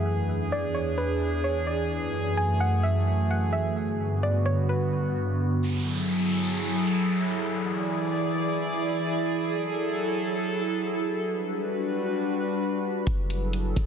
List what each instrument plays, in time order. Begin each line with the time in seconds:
Already playing: ambient pad E3 G#4
0.04 ambient pad E2 D4
0.52 synth pluck D5
0.75 synth pluck C#5
0.98 synth pluck B4
1.44 synth pluck C#5
1.67 synth pluck D5
1.91 ambient pad F#2 A3
2.37 synth pluck G#5
2.60 synth pluck F#5
2.83 synth pluck E5
3.31 synth pluck F#5
3.53 synth pluck E5
3.77 ambient pad G2 D3 B3 F#4
4.23 synth pluck D5
4.46 synth pluck C#5
4.69 synth pluck B4
5.63 ambient pad F#3 E4 G#4 A4, downlifter
7.49 ambient pad E3 G#4 D5
9.35 ambient pad F#3 A4
11.21 ambient pad G3 D4 F#4 B4
13.07 808-style bass F#1, ambient pad F#3 E4 G#4 A4, kick, closed hi-hat
13.30 closed hi-hat
13.53 closed hi-hat
13.76 808-style bass F#1, kick, closed hi-hat